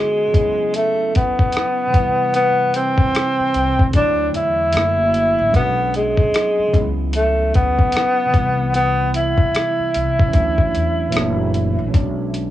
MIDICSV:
0, 0, Header, 1, 6, 480
1, 0, Start_track
1, 0, Tempo, 800000
1, 1403, Time_signature, 4, 2, 24, 8
1, 7503, End_track
2, 0, Start_track
2, 0, Title_t, "Tenor saxophone"
2, 0, Program_c, 0, 66
2, 0, Note_on_c, 0, 56, 78
2, 454, Note_on_c, 0, 57, 72
2, 463, Note_off_c, 0, 56, 0
2, 665, Note_off_c, 0, 57, 0
2, 693, Note_on_c, 0, 59, 72
2, 1384, Note_off_c, 0, 59, 0
2, 1412, Note_on_c, 0, 59, 98
2, 1655, Note_on_c, 0, 60, 84
2, 1664, Note_off_c, 0, 59, 0
2, 2345, Note_off_c, 0, 60, 0
2, 2375, Note_on_c, 0, 62, 85
2, 2586, Note_off_c, 0, 62, 0
2, 2615, Note_on_c, 0, 64, 77
2, 3305, Note_off_c, 0, 64, 0
2, 3334, Note_on_c, 0, 59, 95
2, 3545, Note_off_c, 0, 59, 0
2, 3575, Note_on_c, 0, 56, 76
2, 4194, Note_off_c, 0, 56, 0
2, 4296, Note_on_c, 0, 57, 79
2, 4506, Note_off_c, 0, 57, 0
2, 4532, Note_on_c, 0, 59, 80
2, 5224, Note_off_c, 0, 59, 0
2, 5253, Note_on_c, 0, 59, 92
2, 5465, Note_off_c, 0, 59, 0
2, 5495, Note_on_c, 0, 64, 71
2, 7145, Note_off_c, 0, 64, 0
2, 7503, End_track
3, 0, Start_track
3, 0, Title_t, "Tine electric piano"
3, 0, Program_c, 1, 4
3, 0, Control_c, 1, 64, 127
3, 0, Note_on_c, 1, 50, 51
3, 0, Note_on_c, 1, 56, 51
3, 0, Note_on_c, 1, 59, 56
3, 0, Note_on_c, 1, 61, 55
3, 0, Note_on_c, 1, 66, 72
3, 162, Note_on_c, 1, 49, 62
3, 182, Note_on_c, 1, 54, 52
3, 194, Note_off_c, 1, 61, 0
3, 199, Note_off_c, 1, 56, 0
3, 201, Note_on_c, 1, 61, 49
3, 204, Note_off_c, 1, 59, 0
3, 211, Control_c, 1, 64, 0
3, 214, Note_off_c, 1, 50, 0
3, 214, Note_off_c, 1, 66, 0
3, 220, Note_on_c, 1, 59, 55
3, 238, Note_on_c, 1, 64, 69
3, 312, Control_c, 1, 64, 127
3, 1119, Note_on_c, 1, 48, 56
3, 1123, Note_off_c, 1, 49, 0
3, 1133, Note_off_c, 1, 54, 0
3, 1139, Note_on_c, 1, 52, 60
3, 1143, Note_off_c, 1, 61, 0
3, 1153, Note_off_c, 1, 59, 0
3, 1159, Note_on_c, 1, 55, 55
3, 1162, Note_off_c, 1, 64, 0
3, 1170, Control_c, 1, 64, 0
3, 1178, Note_on_c, 1, 71, 59
3, 1196, Note_on_c, 1, 64, 68
3, 1263, Control_c, 1, 64, 127
3, 2317, Note_off_c, 1, 48, 0
3, 2327, Note_off_c, 1, 52, 0
3, 2337, Note_off_c, 1, 55, 0
3, 2340, Note_on_c, 1, 50, 64
3, 2347, Note_off_c, 1, 71, 0
3, 2348, Note_on_c, 1, 54, 55
3, 2356, Note_off_c, 1, 64, 0
3, 2358, Note_on_c, 1, 57, 60
3, 2368, Note_on_c, 1, 73, 54
3, 2370, Control_c, 1, 64, 0
3, 2377, Note_on_c, 1, 64, 72
3, 2464, Control_c, 1, 64, 127
3, 2830, Note_off_c, 1, 50, 0
3, 2836, Note_off_c, 1, 54, 0
3, 2837, Note_on_c, 1, 50, 64
3, 2841, Note_off_c, 1, 57, 0
3, 2846, Note_off_c, 1, 73, 0
3, 2847, Note_on_c, 1, 54, 57
3, 2850, Note_off_c, 1, 64, 0
3, 2852, Control_c, 1, 64, 0
3, 2856, Note_on_c, 1, 57, 55
3, 2866, Note_on_c, 1, 58, 61
3, 2876, Note_on_c, 1, 64, 74
3, 2944, Control_c, 1, 64, 127
3, 3294, Note_on_c, 1, 61, 58
3, 3297, Note_off_c, 1, 54, 0
3, 3304, Note_on_c, 1, 54, 57
3, 3313, Note_on_c, 1, 56, 55
3, 3320, Note_off_c, 1, 50, 0
3, 3323, Note_on_c, 1, 59, 55
3, 3330, Note_off_c, 1, 57, 0
3, 3331, Control_c, 1, 64, 0
3, 3333, Note_on_c, 1, 62, 72
3, 3335, Note_off_c, 1, 58, 0
3, 3340, Note_off_c, 1, 64, 0
3, 3425, Control_c, 1, 64, 127
3, 4006, Note_on_c, 1, 49, 60
3, 4018, Note_off_c, 1, 54, 0
3, 4025, Note_on_c, 1, 54, 50
3, 4029, Note_off_c, 1, 61, 0
3, 4038, Note_off_c, 1, 56, 0
3, 4043, Note_off_c, 1, 59, 0
3, 4044, Note_on_c, 1, 61, 59
3, 4048, Note_off_c, 1, 62, 0
3, 4050, Control_c, 1, 64, 0
3, 4064, Note_on_c, 1, 59, 57
3, 4084, Note_on_c, 1, 64, 69
3, 4139, Control_c, 1, 64, 127
3, 4954, Note_on_c, 1, 48, 64
3, 4965, Note_off_c, 1, 49, 0
3, 4972, Note_on_c, 1, 52, 54
3, 4975, Note_off_c, 1, 54, 0
3, 4985, Note_off_c, 1, 61, 0
3, 4993, Note_on_c, 1, 55, 59
3, 4995, Note_off_c, 1, 59, 0
3, 5005, Note_off_c, 1, 64, 0
3, 5012, Control_c, 1, 64, 0
3, 5012, Note_on_c, 1, 59, 58
3, 5031, Note_on_c, 1, 64, 70
3, 5133, Control_c, 1, 64, 127
3, 6155, Note_off_c, 1, 48, 0
3, 6164, Note_off_c, 1, 52, 0
3, 6169, Note_on_c, 1, 61, 82
3, 6174, Note_off_c, 1, 55, 0
3, 6180, Note_on_c, 1, 52, 65
3, 6184, Note_off_c, 1, 59, 0
3, 6189, Note_on_c, 1, 54, 72
3, 6194, Note_off_c, 1, 64, 0
3, 6198, Note_on_c, 1, 57, 70
3, 6209, Note_on_c, 1, 62, 79
3, 6211, Control_c, 1, 64, 0
3, 6307, Control_c, 1, 64, 127
3, 6649, Note_on_c, 1, 46, 81
3, 6654, Note_off_c, 1, 52, 0
3, 6661, Note_on_c, 1, 52, 66
3, 6662, Note_off_c, 1, 54, 0
3, 6666, Note_off_c, 1, 61, 0
3, 6669, Note_on_c, 1, 54, 69
3, 6672, Note_off_c, 1, 57, 0
3, 6680, Note_on_c, 1, 57, 71
3, 6686, Note_off_c, 1, 62, 0
3, 6690, Control_c, 1, 64, 0
3, 6690, Note_on_c, 1, 60, 62
3, 6728, Note_on_c, 1, 62, 82
3, 6734, Note_off_c, 1, 60, 0
3, 6798, Control_c, 1, 64, 127
3, 7131, Note_on_c, 1, 61, 69
3, 7133, Note_off_c, 1, 54, 0
3, 7140, Note_on_c, 1, 54, 66
3, 7146, Note_off_c, 1, 46, 0
3, 7150, Note_on_c, 1, 56, 60
3, 7152, Note_off_c, 1, 52, 0
3, 7159, Note_on_c, 1, 59, 61
3, 7162, Note_off_c, 1, 57, 0
3, 7162, Note_off_c, 1, 62, 0
3, 7169, Note_on_c, 1, 62, 76
3, 7170, Control_c, 1, 64, 0
3, 7278, Control_c, 1, 64, 127
3, 7503, Note_off_c, 1, 54, 0
3, 7503, Note_off_c, 1, 56, 0
3, 7503, Note_off_c, 1, 59, 0
3, 7503, Note_off_c, 1, 61, 0
3, 7503, Note_off_c, 1, 62, 0
3, 7503, End_track
4, 0, Start_track
4, 0, Title_t, "Upright bass"
4, 0, Program_c, 2, 32
4, 2128, Note_on_c, 2, 36, 76
4, 2351, Note_off_c, 2, 36, 0
4, 2364, Note_on_c, 2, 38, 95
4, 2589, Note_off_c, 2, 38, 0
4, 2606, Note_on_c, 2, 40, 80
4, 2830, Note_off_c, 2, 40, 0
4, 2846, Note_on_c, 2, 30, 99
4, 3206, Note_off_c, 2, 30, 0
4, 3231, Note_on_c, 2, 33, 84
4, 3319, Note_off_c, 2, 33, 0
4, 3327, Note_on_c, 2, 35, 97
4, 3687, Note_off_c, 2, 35, 0
4, 4045, Note_on_c, 2, 37, 92
4, 4500, Note_off_c, 2, 37, 0
4, 4536, Note_on_c, 2, 38, 81
4, 4755, Note_off_c, 2, 38, 0
4, 5006, Note_on_c, 2, 36, 82
4, 5606, Note_off_c, 2, 36, 0
4, 5968, Note_on_c, 2, 36, 81
4, 6191, Note_off_c, 2, 36, 0
4, 6204, Note_on_c, 2, 38, 98
4, 6429, Note_off_c, 2, 38, 0
4, 6449, Note_on_c, 2, 40, 78
4, 6672, Note_off_c, 2, 40, 0
4, 6689, Note_on_c, 2, 30, 95
4, 7048, Note_off_c, 2, 30, 0
4, 7072, Note_on_c, 2, 33, 82
4, 7159, Note_off_c, 2, 33, 0
4, 7166, Note_on_c, 2, 35, 97
4, 7503, Note_off_c, 2, 35, 0
4, 7503, End_track
5, 0, Start_track
5, 0, Title_t, "Muted upright bass strokes"
5, 2033, Note_on_c, 9, 29, 42
5, 2093, Note_off_c, 9, 29, 0
5, 3954, Note_on_c, 9, 29, 47
5, 4014, Note_off_c, 9, 29, 0
5, 5875, Note_on_c, 9, 29, 47
5, 5935, Note_off_c, 9, 29, 0
5, 7503, End_track
6, 0, Start_track
6, 0, Title_t, "Drums"
6, 204, Note_on_c, 9, 36, 103
6, 206, Note_on_c, 9, 42, 61
6, 264, Note_off_c, 9, 36, 0
6, 266, Note_off_c, 9, 42, 0
6, 442, Note_on_c, 9, 42, 81
6, 502, Note_off_c, 9, 42, 0
6, 689, Note_on_c, 9, 42, 56
6, 694, Note_on_c, 9, 36, 78
6, 749, Note_off_c, 9, 42, 0
6, 754, Note_off_c, 9, 36, 0
6, 834, Note_on_c, 9, 36, 90
6, 894, Note_off_c, 9, 36, 0
6, 914, Note_on_c, 9, 42, 79
6, 940, Note_on_c, 9, 37, 102
6, 974, Note_off_c, 9, 42, 0
6, 1000, Note_off_c, 9, 37, 0
6, 1164, Note_on_c, 9, 36, 103
6, 1164, Note_on_c, 9, 42, 57
6, 1224, Note_off_c, 9, 36, 0
6, 1224, Note_off_c, 9, 42, 0
6, 1404, Note_on_c, 9, 42, 70
6, 1464, Note_off_c, 9, 42, 0
6, 1644, Note_on_c, 9, 42, 62
6, 1704, Note_off_c, 9, 42, 0
6, 1786, Note_on_c, 9, 36, 90
6, 1846, Note_off_c, 9, 36, 0
6, 1889, Note_on_c, 9, 42, 85
6, 1898, Note_on_c, 9, 37, 107
6, 1949, Note_off_c, 9, 42, 0
6, 1958, Note_off_c, 9, 37, 0
6, 2126, Note_on_c, 9, 42, 61
6, 2186, Note_off_c, 9, 42, 0
6, 2276, Note_on_c, 9, 36, 99
6, 2336, Note_off_c, 9, 36, 0
6, 2360, Note_on_c, 9, 42, 87
6, 2362, Note_on_c, 9, 36, 90
6, 2420, Note_off_c, 9, 42, 0
6, 2422, Note_off_c, 9, 36, 0
6, 2606, Note_on_c, 9, 42, 58
6, 2666, Note_off_c, 9, 42, 0
6, 2835, Note_on_c, 9, 42, 79
6, 2861, Note_on_c, 9, 37, 113
6, 2895, Note_off_c, 9, 42, 0
6, 2921, Note_off_c, 9, 37, 0
6, 3085, Note_on_c, 9, 42, 57
6, 3145, Note_off_c, 9, 42, 0
6, 3324, Note_on_c, 9, 36, 97
6, 3324, Note_on_c, 9, 42, 75
6, 3384, Note_off_c, 9, 36, 0
6, 3384, Note_off_c, 9, 42, 0
6, 3564, Note_on_c, 9, 42, 62
6, 3624, Note_off_c, 9, 42, 0
6, 3705, Note_on_c, 9, 36, 89
6, 3765, Note_off_c, 9, 36, 0
6, 3806, Note_on_c, 9, 42, 91
6, 3815, Note_on_c, 9, 37, 102
6, 3866, Note_off_c, 9, 42, 0
6, 3875, Note_off_c, 9, 37, 0
6, 4042, Note_on_c, 9, 36, 100
6, 4044, Note_on_c, 9, 42, 63
6, 4102, Note_off_c, 9, 36, 0
6, 4104, Note_off_c, 9, 42, 0
6, 4279, Note_on_c, 9, 42, 89
6, 4339, Note_off_c, 9, 42, 0
6, 4526, Note_on_c, 9, 42, 56
6, 4533, Note_on_c, 9, 36, 79
6, 4586, Note_off_c, 9, 42, 0
6, 4593, Note_off_c, 9, 36, 0
6, 4672, Note_on_c, 9, 36, 86
6, 4732, Note_off_c, 9, 36, 0
6, 4754, Note_on_c, 9, 42, 74
6, 4780, Note_on_c, 9, 37, 111
6, 4814, Note_off_c, 9, 42, 0
6, 4840, Note_off_c, 9, 37, 0
6, 5003, Note_on_c, 9, 36, 96
6, 5004, Note_on_c, 9, 42, 55
6, 5063, Note_off_c, 9, 36, 0
6, 5064, Note_off_c, 9, 42, 0
6, 5244, Note_on_c, 9, 42, 73
6, 5304, Note_off_c, 9, 42, 0
6, 5485, Note_on_c, 9, 42, 63
6, 5545, Note_off_c, 9, 42, 0
6, 5625, Note_on_c, 9, 36, 89
6, 5685, Note_off_c, 9, 36, 0
6, 5727, Note_on_c, 9, 42, 84
6, 5737, Note_on_c, 9, 37, 103
6, 5787, Note_off_c, 9, 42, 0
6, 5797, Note_off_c, 9, 37, 0
6, 5966, Note_on_c, 9, 42, 62
6, 6026, Note_off_c, 9, 42, 0
6, 6117, Note_on_c, 9, 36, 96
6, 6177, Note_off_c, 9, 36, 0
6, 6200, Note_on_c, 9, 42, 82
6, 6203, Note_on_c, 9, 36, 92
6, 6260, Note_off_c, 9, 42, 0
6, 6263, Note_off_c, 9, 36, 0
6, 6348, Note_on_c, 9, 36, 76
6, 6408, Note_off_c, 9, 36, 0
6, 6447, Note_on_c, 9, 42, 56
6, 6507, Note_off_c, 9, 42, 0
6, 6674, Note_on_c, 9, 42, 81
6, 6700, Note_on_c, 9, 37, 108
6, 6734, Note_off_c, 9, 42, 0
6, 6760, Note_off_c, 9, 37, 0
6, 6925, Note_on_c, 9, 42, 58
6, 6985, Note_off_c, 9, 42, 0
6, 7164, Note_on_c, 9, 36, 99
6, 7164, Note_on_c, 9, 42, 72
6, 7224, Note_off_c, 9, 36, 0
6, 7224, Note_off_c, 9, 42, 0
6, 7404, Note_on_c, 9, 42, 58
6, 7464, Note_off_c, 9, 42, 0
6, 7503, End_track
0, 0, End_of_file